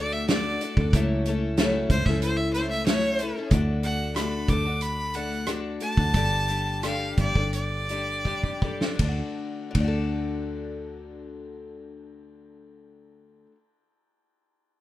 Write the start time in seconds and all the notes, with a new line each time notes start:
Already playing: D2 D5
0.00 A3 D4 F#4 A4
0.13 E5
0.28 D3 A3 D4 F#4 A4 D5, snare, closed hi-hat
0.61 A3 D4 F#4 A4, closed hi-hat
0.77 D2 D4 F#4 A4, kick
0.93 C#2 C#3 F#3 A3 C#4 E4 A4, kick, closed hi-hat
1.25 A3 C#4 E4 A4, closed hi-hat
1.57 C#3 F#3 A3 C#4 E4 A4, snare, closed hi-hat
1.90 C#2 A3 C#4 E4 C5, kick, closed hi-hat
1.94 A4
2.06 C#2 E4 A4 E5, kick, snare
2.10 A3 C#4
2.22 C5, closed hi-hat
2.37 E5
2.53 A3 C#4 E4 C5, closed hi-hat
2.58 A4
2.70 E5
2.86 C#3 F#3 A3 C#4 E4 A4 C#5, snare, closed hi-hat
3.19 A3 C#4 E4, closed hi-hat
3.23 A4
3.38 A3 C#4 E4 A4
3.51 D2 D3 A3 D4 F#4 A4, kick, closed hi-hat
3.83 A3 D4 F#4 A4 F#5, closed hi-hat
4.16 D3 A3 D4 F#4 A4 B5, cross-stick, closed hi-hat
4.48 D2 A3 D4 F#4 D6, kick, closed hi-hat
4.52 A4
4.65 D4 F#4 A4
4.81 B5, closed hi-hat
5.14 A3 D4 F#4 A4 F#5, closed hi-hat
5.46 D3 A3 D4 F#4 A4, cross-stick, closed hi-hat
5.80 A3 D4 F#4 A4 A5, closed hi-hat
5.97 D2 D4 F#4 A4, kick
6.14 G1 G3 D4 G4 A4, kick, closed hi-hat
6.48 G3 D4 G4 A4, closed hi-hat
6.83 G3 D4 G4 A4 F5, cross-stick, closed hi-hat
7.17 G1 G3 D4 G4 A4 D5, kick, closed hi-hat
7.35 G1 D4 G4 A4, kick
7.53 D5, closed hi-hat
7.89 G3 D4 G4 A4, closed hi-hat
8.25 G3 D4 G4 A4, kick
8.43 kick
8.62 G3 D4 G4 A4, kick
8.81 D4 G4 A4, snare
8.95 D2 D3, ride
8.99 A3, kick
9.04 D4
9.08 F#4 A4
9.71 D3
9.75 D2 A3, kick, ride
9.80 D4 F#4
9.88 A4